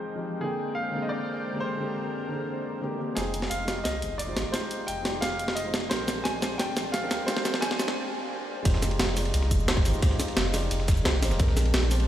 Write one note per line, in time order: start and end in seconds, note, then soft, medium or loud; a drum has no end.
0.00 0.15 F3 medium
0.00 0.40 F3 medium
0.00 0.16 G#3 medium
0.00 0.38 G#3 medium
0.00 0.17 C4 medium
0.00 0.17 D#4 medium
0.00 0.40 D#4 medium
0.00 0.18 G4 medium
0.00 0.44 G#4 medium
0.00 0.38 G5 medium
0.15 0.40 F3 medium
0.15 0.39 G#3 medium
0.15 0.40 C4 medium
0.15 0.41 D#4 medium
0.15 0.41 G4 medium
0.40 0.90 D3 medium
0.40 0.91 G#3 medium
0.40 3.14 G#3 medium
0.40 0.92 A#3 medium
0.40 3.14 C4 medium
0.40 0.92 C4 medium
0.40 3.14 D4 medium
0.40 0.74 G#4 medium
0.40 3.14 A#4 medium
0.40 3.14 G5 medium
0.45 0.93 G5 medium
0.75 1.04 F5 medium
0.91 1.51 D3 medium
0.91 1.51 G#3 medium
0.91 1.52 A#3 medium
0.91 1.53 C4 medium
0.96 1.53 G#4 medium
1.02 1.10 D#5 medium
1.09 1.63 D5 medium
1.52 1.75 D3 medium
1.52 1.77 G#3 medium
1.52 1.77 A#3 medium
1.52 1.78 C4 medium
1.52 1.78 G4 medium
1.60 2.77 C5 medium
1.77 2.27 D3 medium
1.77 2.28 G#3 medium
1.77 2.29 A#3 medium
1.77 2.30 C4 medium
1.82 2.30 G4 medium
2.28 2.79 D3 medium
2.28 2.80 G#3 medium
2.28 2.81 A#3 medium
2.28 2.81 C4 medium
2.33 2.82 G#4 medium
2.81 2.97 D3 medium
2.81 2.97 G#3 medium
2.81 2.97 A#3 medium
2.81 2.98 C4 medium
2.81 2.98 G4 medium
2.98 3.14 D3 medium
2.98 3.13 G#3 medium
2.98 3.15 A#3 medium
2.98 3.15 C4 medium
2.98 3.15 G4 medium
3.14 3.50 F1 medium
3.14 3.64 G#3 medium
3.14 3.65 D#4 medium
3.14 5.88 D#4 medium
3.14 3.66 F4 medium
3.14 3.51 G#4 medium
3.14 3.67 G5 medium
3.14 snare soft
3.14 closed hi-hat medium
3.19 3.67 C5 medium
3.34 closed hi-hat medium
3.42 snare soft
3.50 3.84 F1 medium
3.50 3.86 F5 medium
3.50 closed hi-hat medium
3.65 4.25 G#3 medium
3.65 4.26 D#4 medium
3.65 4.26 F4 medium
3.65 4.27 G4 medium
3.65 snare soft
3.65 closed hi-hat medium
3.71 4.28 D#5 medium
3.84 4.04 C2 loud
3.84 4.20 D#5 medium
3.84 snare soft
3.84 closed hi-hat medium
4.02 4.35 F1 medium
4.02 closed hi-hat medium
4.18 4.54 D5 medium
4.18 closed hi-hat medium
4.27 4.50 G#3 medium
4.27 4.51 D#4 medium
4.27 4.52 F4 medium
4.27 4.52 G4 medium
4.27 4.52 C5 medium
4.37 4.44 G#1 medium
4.37 snare medium
4.37 closed hi-hat medium
4.51 5.01 G#3 medium
4.51 5.02 D#4 medium
4.51 5.03 F4 medium
4.51 5.04 G4 medium
4.51 4.85 C5 medium
4.51 snare medium
4.51 closed hi-hat medium
4.56 5.04 C5 medium
4.71 closed hi-hat medium
4.87 5.21 F1 medium
4.87 5.23 G5 loud
4.87 closed hi-hat medium
5.02 5.62 G#3 medium
5.02 5.63 D#4 medium
5.02 5.63 F4 medium
5.02 5.64 G4 medium
5.02 snare medium
5.02 closed hi-hat medium
5.08 5.65 D5 medium
5.21 5.90 F1 medium
5.21 5.57 F5 loud
5.21 snare medium
5.21 closed hi-hat medium
5.39 closed hi-hat medium
5.48 snare medium
5.55 5.88 D#5 medium
5.55 closed hi-hat medium
5.64 5.87 G#3 medium
5.64 5.89 D#4 medium
5.64 5.89 F4 medium
5.64 5.89 G4 medium
5.64 5.90 C5 medium
5.74 snare medium
5.74 closed hi-hat medium
5.88 6.24 A#1 loud
5.88 6.38 G#3 medium
5.88 6.39 C4 medium
5.88 8.62 C4 medium
5.88 6.40 D4 medium
5.88 8.62 D4 medium
5.88 6.41 G4 medium
5.88 6.26 C5 medium
5.88 snare medium
5.88 closed hi-hat medium
5.93 6.42 A#4 medium
6.08 snare medium
6.08 closed hi-hat medium
6.08 shaker medium
6.24 6.58 A#1 medium
6.24 6.60 G#5 loud
6.24 snare medium
6.24 closed hi-hat medium
6.40 6.99 G#3 medium
6.40 7.00 C4 medium
6.40 7.01 D4 medium
6.40 7.01 G4 medium
6.40 snare medium
6.40 closed hi-hat medium
6.40 shaker medium
6.45 7.02 C5 medium
6.58 6.78 F1 loud
6.58 6.94 G5 loud
6.58 snare medium
6.58 closed hi-hat medium
6.77 7.10 A#1 medium
6.77 snare medium
6.77 closed hi-hat medium
6.77 shaker medium
6.92 7.28 F5 loud
6.92 snare medium
6.92 closed hi-hat medium
7.01 7.24 G#3 medium
7.01 7.25 C4 medium
7.01 7.26 D4 medium
7.01 7.26 G4 medium
7.01 7.27 A#4 medium
7.11 7.19 D2 medium
7.11 snare medium
7.11 closed hi-hat medium
7.11 shaker medium
7.25 7.75 G#3 medium
7.25 7.77 C4 medium
7.25 7.77 D4 medium
7.25 7.78 G4 medium
7.25 7.63 C5 loud
7.25 snare medium
7.25 closed hi-hat medium
7.31 7.79 A#4 loud
7.37 snare medium
7.45 snare medium
7.45 closed hi-hat medium
7.45 shaker medium
7.54 snare medium
7.61 7.95 A#1 medium
7.61 7.97 G#5 loud
7.61 snare loud
7.61 closed hi-hat medium
7.71 snare medium
7.77 7.95 G#3 medium
7.77 7.96 C4 medium
7.77 7.97 D4 medium
7.77 7.97 G4 medium
7.77 snare medium
7.77 closed hi-hat medium
7.77 shaker medium
7.82 7.98 C5 medium
7.88 snare medium
8.63 8.98 F1 loud
8.63 9.13 G#3 medium
8.63 9.14 D#4 medium
8.63 11.37 D#4 medium
8.63 9.15 F4 medium
8.63 9.15 G4 medium
8.63 kick loud
8.63 closed hi-hat medium
8.63 ride medium
8.68 9.16 C5 medium
8.74 snare medium
8.82 snare soft
8.82 closed hi-hat loud
8.82 ride medium
8.82 shaker medium
8.91 ride soft
8.99 9.32 F1 medium
8.99 snare loud
8.99 closed hi-hat medium
8.99 ride medium
9.14 9.65 G#3 medium
9.14 9.66 D#4 medium
9.14 9.66 F4 medium
9.14 9.67 G4 medium
9.14 open hi-hat medium
9.14 ride medium
9.14 shaker medium
9.19 9.68 D5 medium
9.25 ride soft
9.34 9.53 C2 loud
9.34 closed hi-hat medium
9.34 ride medium
9.42 snare soft
9.51 9.84 F1 medium
9.51 kick medium
9.51 closed hi-hat medium
9.51 shaker medium
9.60 shaker soft
9.67 9.82 G#3 medium
9.67 9.83 D#4 medium
9.67 9.83 F4 medium
9.67 9.84 G4 medium
9.67 9.84 C5 loud
9.67 snare loud
9.67 closed hi-hat medium
9.67 ride medium
9.77 kick loud
9.84 9.93 G#1 medium
9.84 9.98 G#3 medium
9.84 10.00 D#4 medium
9.84 10.00 F4 medium
9.84 10.01 G4 medium
9.84 10.01 C5 medium
9.84 open hi-hat medium
9.84 ride medium
9.84 shaker medium
9.94 shaker soft
10.00 10.50 G#3 medium
10.00 10.51 D#4 medium
10.00 10.52 F4 medium
10.00 10.52 G4 medium
10.00 kick loud
10.00 closed hi-hat medium
10.00 ride medium
10.05 10.53 C5 medium
10.11 snare soft
10.20 snare soft
10.20 closed hi-hat loud
10.20 ride medium
10.20 shaker medium
10.28 ride soft
10.37 10.70 F1 medium
10.37 snare loud
10.37 closed hi-hat medium
10.37 ride medium
10.51 11.02 G#3 medium
10.51 11.03 D#4 medium
10.51 11.03 F4 medium
10.51 11.04 G4 medium
10.51 snare soft
10.51 open hi-hat medium
10.51 ride medium
10.51 shaker medium
10.56 11.05 D5 medium
10.71 11.05 F1 medium
10.71 closed hi-hat medium
10.71 ride medium
10.80 snare soft
10.88 kick loud
10.88 snare medium
10.88 closed hi-hat medium
10.88 ride medium
10.88 shaker medium
10.97 shaker soft
11.04 11.24 C2 medium
11.04 11.20 G#3 medium
11.04 11.20 D#4 medium
11.04 11.20 F4 medium
11.04 11.21 G4 medium
11.04 11.21 C5 loud
11.04 snare loud
11.04 closed hi-hat medium
11.04 ride medium
11.21 11.33 G#1 medium
11.21 11.35 G#3 medium
11.21 11.37 D#4 medium
11.21 11.38 F4 medium
11.21 11.38 G4 medium
11.21 11.38 C5 medium
11.21 snare soft
11.21 open hi-hat medium
11.21 ride medium
11.21 shaker medium
11.31 11.39 D#1 medium
11.31 snare soft
11.31 shaker soft
11.37 11.73 A#1 loud
11.37 11.87 G#3 medium
11.37 11.88 C4 medium
11.37 12.08 C4 medium
11.37 12.08 D4 medium
11.37 11.89 D4 medium
11.37 11.90 G4 medium
11.37 kick loud
11.37 closed hi-hat medium
11.37 ride medium
11.42 11.90 A#4 medium
11.48 snare medium
11.57 snare soft
11.57 closed hi-hat medium
11.57 ride medium
11.57 shaker medium
11.65 ride soft
11.74 12.07 A#1 medium
11.74 snare loud
11.74 closed hi-hat medium
11.74 ride medium
11.88 12.08 G#3 medium
11.88 12.08 C4 medium
11.88 12.08 D4 medium
11.88 12.08 G4 medium
11.88 open hi-hat medium
11.88 ride medium
11.88 shaker medium
11.94 12.08 C5 medium
12.00 ride soft